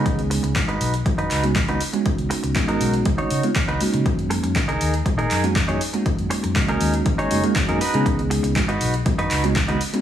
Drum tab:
HH |xxoxxxoxxxoxxxox|xxoxxxoxxxoxxxox|xxoxxxoxxxoxxxox|xxoxxxoxxxoxxxox|
CP |----x-----x-x---|----x-------x---|----x-----x-x---|----x-------x---|
BD |o---o---o---o---|o---o---o---o---|o---o---o---o---|o---o---o---o---|

HH |xxoxxxoxxxoxxxox|
CP |----x-----x-x---|
BD |o---o---o---o---|